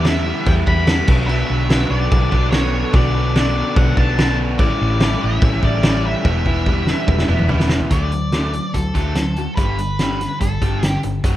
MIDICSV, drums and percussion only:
0, 0, Header, 1, 2, 480
1, 0, Start_track
1, 0, Tempo, 414651
1, 1491, Time_signature, 4, 2, 24, 8
1, 13158, End_track
2, 0, Start_track
2, 0, Title_t, "Drums"
2, 54, Note_on_c, 9, 49, 59
2, 58, Note_on_c, 9, 38, 103
2, 170, Note_off_c, 9, 49, 0
2, 174, Note_off_c, 9, 38, 0
2, 535, Note_on_c, 9, 49, 65
2, 539, Note_on_c, 9, 36, 104
2, 651, Note_off_c, 9, 49, 0
2, 655, Note_off_c, 9, 36, 0
2, 776, Note_on_c, 9, 36, 75
2, 892, Note_off_c, 9, 36, 0
2, 1007, Note_on_c, 9, 49, 64
2, 1010, Note_on_c, 9, 38, 118
2, 1123, Note_off_c, 9, 49, 0
2, 1126, Note_off_c, 9, 38, 0
2, 1245, Note_on_c, 9, 49, 100
2, 1252, Note_on_c, 9, 36, 103
2, 1360, Note_off_c, 9, 49, 0
2, 1368, Note_off_c, 9, 36, 0
2, 1496, Note_on_c, 9, 49, 63
2, 1611, Note_off_c, 9, 49, 0
2, 1968, Note_on_c, 9, 49, 62
2, 1972, Note_on_c, 9, 38, 110
2, 2084, Note_off_c, 9, 49, 0
2, 2088, Note_off_c, 9, 38, 0
2, 2451, Note_on_c, 9, 36, 105
2, 2453, Note_on_c, 9, 49, 59
2, 2567, Note_off_c, 9, 36, 0
2, 2569, Note_off_c, 9, 49, 0
2, 2687, Note_on_c, 9, 36, 74
2, 2803, Note_off_c, 9, 36, 0
2, 2920, Note_on_c, 9, 49, 59
2, 2923, Note_on_c, 9, 38, 106
2, 3035, Note_off_c, 9, 49, 0
2, 3039, Note_off_c, 9, 38, 0
2, 3394, Note_on_c, 9, 49, 62
2, 3401, Note_on_c, 9, 36, 116
2, 3510, Note_off_c, 9, 49, 0
2, 3517, Note_off_c, 9, 36, 0
2, 3884, Note_on_c, 9, 49, 60
2, 3888, Note_on_c, 9, 38, 111
2, 4000, Note_off_c, 9, 49, 0
2, 4004, Note_off_c, 9, 38, 0
2, 4357, Note_on_c, 9, 49, 65
2, 4358, Note_on_c, 9, 36, 112
2, 4472, Note_off_c, 9, 49, 0
2, 4473, Note_off_c, 9, 36, 0
2, 4597, Note_on_c, 9, 36, 78
2, 4713, Note_off_c, 9, 36, 0
2, 4845, Note_on_c, 9, 49, 63
2, 4848, Note_on_c, 9, 38, 111
2, 4961, Note_off_c, 9, 49, 0
2, 4964, Note_off_c, 9, 38, 0
2, 5315, Note_on_c, 9, 36, 104
2, 5315, Note_on_c, 9, 49, 65
2, 5430, Note_off_c, 9, 36, 0
2, 5430, Note_off_c, 9, 49, 0
2, 5791, Note_on_c, 9, 49, 58
2, 5794, Note_on_c, 9, 38, 112
2, 5906, Note_off_c, 9, 49, 0
2, 5910, Note_off_c, 9, 38, 0
2, 6267, Note_on_c, 9, 49, 53
2, 6274, Note_on_c, 9, 36, 116
2, 6382, Note_off_c, 9, 49, 0
2, 6389, Note_off_c, 9, 36, 0
2, 6515, Note_on_c, 9, 36, 77
2, 6631, Note_off_c, 9, 36, 0
2, 6750, Note_on_c, 9, 49, 62
2, 6753, Note_on_c, 9, 38, 117
2, 6866, Note_off_c, 9, 49, 0
2, 6869, Note_off_c, 9, 38, 0
2, 7234, Note_on_c, 9, 36, 116
2, 7350, Note_off_c, 9, 36, 0
2, 7475, Note_on_c, 9, 36, 67
2, 7591, Note_off_c, 9, 36, 0
2, 7714, Note_on_c, 9, 36, 77
2, 7830, Note_off_c, 9, 36, 0
2, 7952, Note_on_c, 9, 38, 79
2, 8067, Note_off_c, 9, 38, 0
2, 8195, Note_on_c, 9, 36, 110
2, 8311, Note_off_c, 9, 36, 0
2, 8318, Note_on_c, 9, 38, 78
2, 8434, Note_off_c, 9, 38, 0
2, 8435, Note_on_c, 9, 45, 79
2, 8551, Note_off_c, 9, 45, 0
2, 8552, Note_on_c, 9, 45, 83
2, 8668, Note_off_c, 9, 45, 0
2, 8670, Note_on_c, 9, 43, 97
2, 8786, Note_off_c, 9, 43, 0
2, 8796, Note_on_c, 9, 38, 80
2, 8905, Note_off_c, 9, 38, 0
2, 8905, Note_on_c, 9, 38, 103
2, 9021, Note_off_c, 9, 38, 0
2, 9031, Note_on_c, 9, 43, 86
2, 9146, Note_off_c, 9, 43, 0
2, 9150, Note_on_c, 9, 42, 71
2, 9155, Note_on_c, 9, 36, 94
2, 9266, Note_off_c, 9, 42, 0
2, 9271, Note_off_c, 9, 36, 0
2, 9395, Note_on_c, 9, 42, 50
2, 9511, Note_off_c, 9, 42, 0
2, 9633, Note_on_c, 9, 42, 58
2, 9636, Note_on_c, 9, 38, 87
2, 9748, Note_off_c, 9, 42, 0
2, 9752, Note_off_c, 9, 38, 0
2, 9879, Note_on_c, 9, 42, 52
2, 9995, Note_off_c, 9, 42, 0
2, 10120, Note_on_c, 9, 36, 64
2, 10120, Note_on_c, 9, 42, 68
2, 10236, Note_off_c, 9, 36, 0
2, 10236, Note_off_c, 9, 42, 0
2, 10361, Note_on_c, 9, 36, 66
2, 10361, Note_on_c, 9, 42, 47
2, 10476, Note_off_c, 9, 36, 0
2, 10477, Note_off_c, 9, 42, 0
2, 10595, Note_on_c, 9, 42, 74
2, 10598, Note_on_c, 9, 38, 98
2, 10711, Note_off_c, 9, 42, 0
2, 10714, Note_off_c, 9, 38, 0
2, 10839, Note_on_c, 9, 42, 51
2, 10955, Note_off_c, 9, 42, 0
2, 11079, Note_on_c, 9, 42, 68
2, 11082, Note_on_c, 9, 36, 95
2, 11195, Note_off_c, 9, 42, 0
2, 11198, Note_off_c, 9, 36, 0
2, 11326, Note_on_c, 9, 42, 54
2, 11442, Note_off_c, 9, 42, 0
2, 11564, Note_on_c, 9, 42, 68
2, 11567, Note_on_c, 9, 38, 95
2, 11680, Note_off_c, 9, 42, 0
2, 11683, Note_off_c, 9, 38, 0
2, 11816, Note_on_c, 9, 42, 55
2, 11820, Note_on_c, 9, 38, 27
2, 11932, Note_off_c, 9, 42, 0
2, 11936, Note_off_c, 9, 38, 0
2, 12047, Note_on_c, 9, 42, 76
2, 12048, Note_on_c, 9, 36, 69
2, 12163, Note_off_c, 9, 36, 0
2, 12163, Note_off_c, 9, 42, 0
2, 12290, Note_on_c, 9, 36, 72
2, 12291, Note_on_c, 9, 42, 49
2, 12406, Note_off_c, 9, 36, 0
2, 12407, Note_off_c, 9, 42, 0
2, 12533, Note_on_c, 9, 42, 82
2, 12536, Note_on_c, 9, 38, 100
2, 12649, Note_off_c, 9, 42, 0
2, 12652, Note_off_c, 9, 38, 0
2, 12770, Note_on_c, 9, 42, 58
2, 12886, Note_off_c, 9, 42, 0
2, 13007, Note_on_c, 9, 42, 74
2, 13011, Note_on_c, 9, 36, 90
2, 13122, Note_off_c, 9, 42, 0
2, 13126, Note_off_c, 9, 36, 0
2, 13158, End_track
0, 0, End_of_file